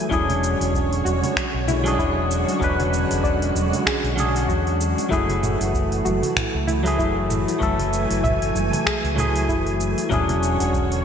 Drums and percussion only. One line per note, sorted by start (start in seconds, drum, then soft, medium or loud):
0.11 kick loud
0.11 cabasa soft
0.29 open hi-hat soft
0.29 low conga medium
0.44 cabasa medium
0.61 open hi-hat medium
0.61 cabasa soft
0.74 kick loud
0.74 cabasa soft
0.93 open hi-hat soft
1.05 high conga medium
1.05 cabasa medium
1.24 open hi-hat medium
1.24 low conga medium
1.24 cabasa soft
1.36 finger snap medium
1.36 kick loud
1.36 cabasa soft
1.68 low conga medium
1.68 cabasa medium
1.85 open hi-hat soft
1.85 high conga medium
1.85 cabasa soft
1.99 kick loud
1.99 cabasa soft
2.31 cabasa medium
2.48 open hi-hat soft
2.48 high conga medium
2.48 cabasa soft
2.61 kick loud
2.61 cabasa soft
2.80 open hi-hat soft
2.80 low conga medium
2.93 cabasa medium
3.11 open hi-hat soft
3.11 cabasa soft
3.24 kick loud
3.24 cabasa soft
3.42 open hi-hat soft
3.55 high conga medium
3.55 cabasa medium
3.73 open hi-hat soft
3.73 low conga medium
3.73 cabasa soft
3.86 finger snap medium
3.86 kick loud
3.86 cabasa soft
4.05 open hi-hat soft
4.18 low conga medium
4.18 cabasa medium
4.36 open hi-hat soft
4.36 high conga medium
4.36 cabasa soft
4.49 kick loud
4.49 cabasa soft
4.67 open hi-hat soft
4.81 cabasa medium
4.98 open hi-hat soft
4.98 high conga medium
4.98 cabasa soft
5.11 kick medium
5.11 cabasa soft
5.29 open hi-hat soft
5.29 low conga medium
5.43 mid tom medium
5.43 cabasa medium
5.61 open hi-hat soft
5.61 cabasa soft
5.74 kick loud
5.74 cabasa soft
5.92 open hi-hat soft
6.05 high conga medium
6.05 cabasa medium
6.23 open hi-hat soft
6.23 low conga medium
6.23 cabasa soft
6.36 finger snap medium
6.36 kick loud
6.36 mid tom medium
6.36 cabasa soft
6.68 low conga medium
6.68 cabasa medium
6.85 open hi-hat soft
6.85 high conga medium
6.85 cabasa soft
6.99 kick medium
6.99 cabasa soft
7.30 mid tom medium
7.30 cabasa medium
7.48 open hi-hat soft
7.48 high conga medium
7.48 cabasa soft
7.61 kick loud
7.61 cabasa soft
7.79 open hi-hat soft
7.79 low conga medium
7.93 cabasa medium
8.11 open hi-hat medium
8.11 cabasa soft
8.24 kick loud
8.24 mid tom medium
8.24 cabasa soft
8.42 open hi-hat soft
8.55 high conga medium
8.55 cabasa medium
8.73 open hi-hat medium
8.73 low conga medium
8.73 cabasa soft
8.86 finger snap medium
8.86 kick medium
8.86 cabasa soft
9.05 open hi-hat soft
9.17 mid tom medium
9.17 low conga medium
9.17 cabasa medium
9.35 open hi-hat soft
9.35 high conga medium
9.35 cabasa soft
9.49 kick medium
9.49 cabasa soft
9.67 open hi-hat soft
9.80 cabasa medium
9.98 open hi-hat medium
9.98 high conga medium
9.98 cabasa soft
10.11 kick medium
10.11 mid tom medium
10.11 cabasa soft
10.29 open hi-hat soft
10.29 low conga medium
10.43 cabasa medium
10.60 open hi-hat medium
10.60 cabasa soft
10.74 kick medium
10.74 cabasa soft
10.92 open hi-hat soft